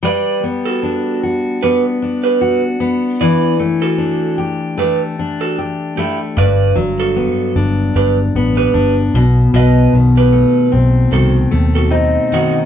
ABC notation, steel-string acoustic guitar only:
X:1
M:4/4
L:1/8
Q:"Swing 16ths" 1/4=76
K:G
V:1 name="Steel-string acoustic guitar"
G, B, D F B, D F B, | E, A, D G A, D G A, | G,, F, B, D2 B, D B,, | B,, ^D, A, C D, A, C D, |]